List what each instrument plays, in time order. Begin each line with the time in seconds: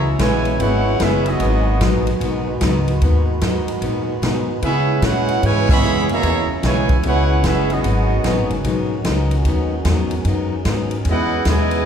Already playing: upright bass C#2, trombone section C#3 F#3 G#3 E4
0.18 upright bass A#1, steel-string acoustic guitar C#3 G#3 B3 E4, trombone section E3 G#3 B3, trumpet section E4 B4 C#5 G#5, kick, snare, hi-hat pedal, ride
0.45 ride
0.58 upright bass G#1, steel-string acoustic guitar C#3 G#3 B3 E4, trombone section G#3 B3 F#4, trumpet section E4 B4 C#5 F#5, kick, ride
0.99 upright bass F#1, steel-string acoustic guitar C#3 G#3 B3 E4, trombone section G#3 B3 E4, trumpet section C#4 G#4 B4 E5, kick, snare, hi-hat pedal, ride
1.26 trombone section F#3 B3 D#4, trumpet section B3 F#4 G#4 D#5, ride
1.40 upright bass G#1, steel-string acoustic guitar G#2 F#3 B3 D#4, trombone section D#3 F#4 B4, kick, ride
1.80 upright bass A#1, steel-string acoustic guitar G#2 F#3 B3 D#4, kick, snare, hi-hat pedal, ride
2.07 ride
2.20 upright bass B1, steel-string acoustic guitar G#2 F#3 B3 D#4, kick, ride
2.61 upright bass C#2, steel-string acoustic guitar G#2 F#3 B3 D#4, kick, snare, hi-hat pedal, ride
2.88 ride
3.01 upright bass D#2, steel-string acoustic guitar G#2 F#3 B3 D#4, kick, ride
3.41 steel-string acoustic guitar G#2 F#3 B3 D#4, upright bass G#2, kick, snare, hi-hat pedal, ride
3.68 ride
3.81 steel-string acoustic guitar G#2 F#3 B3 D#4, upright bass A#2, kick, ride
4.22 steel-string acoustic guitar G#2 F#3 B3 D#4, upright bass B2, kick, snare, hi-hat pedal, ride
4.61 trombone section C#3 G#3 B3 C#4 E4, steel-string acoustic guitar C#3 B3 E4, upright bass C#3, trumpet section C#4 G#4 B4 E5, kick, ride
4.65 steel-string acoustic guitar G#4
5.02 upright bass A#2, steel-string acoustic guitar C#3 B3 E4 G#4, trombone section G#3 C#4 F#4, trumpet section E4 B4 C#5 F#5, kick, snare, hi-hat pedal, ride
5.28 ride
5.43 upright bass G#2, trombone section B2 E3 G#3, steel-string acoustic guitar C#3 B3 E4 G#4, trumpet section E4 B4 C#5 G#5, kick, ride
5.69 trombone section E3 G#3 B3, trumpet section G#4 C#5 E5 B5, kick, crash
5.82 upright bass F#2, steel-string acoustic guitar C#3 B3 E4 G#4, hi-hat pedal
6.09 trombone section B2 E3 A#3, trumpet section G#4 C#5 E5 A#5, ride
6.23 upright bass E2, steel-string acoustic guitar C#3 B3 E4 G#4, kick, ride
6.48 muted upright bass stroke
6.63 upright bass B1, trombone section B2 E3 G#3, steel-string acoustic guitar C#3 B3 E4 G#4, trumpet section E4 B4 C#5 G#5, kick, snare, hi-hat pedal, ride
6.89 kick, ride
7.03 upright bass C#2, steel-string acoustic guitar C#3 B3 E4 G#4, trombone section G#3 B3 F#4, trumpet section E4 B4 C#5 F#5, kick, ride
7.43 upright bass F#1, steel-string acoustic guitar C#3 B3 E4 G#4, trombone section G#3 B3 E4, trumpet section C#4 G#4 B4 E5, kick, snare, hi-hat pedal, ride
7.70 trombone section F#3 B3 D#4, trumpet section B3 F#4 G#4 D#5, ride
7.84 upright bass G#1, steel-string acoustic guitar G#2 F#3 B3 D#4, trombone section D#3 F#4, kick, ride
8.24 upright bass A#1, steel-string acoustic guitar G#2 F#3 B3 D#4, kick, snare, hi-hat pedal, ride
8.36 upright bass G#1
8.49 upright bass F#1, ride
8.64 upright bass B1, steel-string acoustic guitar G#2 F#3 B3 D#4, kick, ride
9.04 upright bass C#2, steel-string acoustic guitar G#2 F#3 B3 D#4, kick, snare, hi-hat pedal, ride
9.31 ride
9.45 upright bass D#2, steel-string acoustic guitar G#2 F#3 B3 D#4, kick, ride
9.85 upright bass E2, steel-string acoustic guitar G#2 F#3 B3 D#4, kick, snare, hi-hat pedal, ride
10.11 ride
10.25 upright bass F#2, steel-string acoustic guitar G#2 F#3 B3 D#4, kick, ride
10.65 upright bass G#2, steel-string acoustic guitar G#2 F#3 B3 D#4, kick, snare, hi-hat pedal, ride
10.91 ride
11.05 upright bass E2, steel-string acoustic guitar E3 G#3 B3, trombone section G#3 B3 E4 F#4 G#4, kick, ride
11.09 steel-string acoustic guitar D#4, trumpet section E4 B4 D#5 F#5
11.45 upright bass D#2, trombone section B2 G#3, steel-string acoustic guitar E3 G#3 B3 D#4, trumpet section G#5, kick, snare, hi-hat pedal, ride
11.49 trumpet section E4 B4 D#5
11.71 ride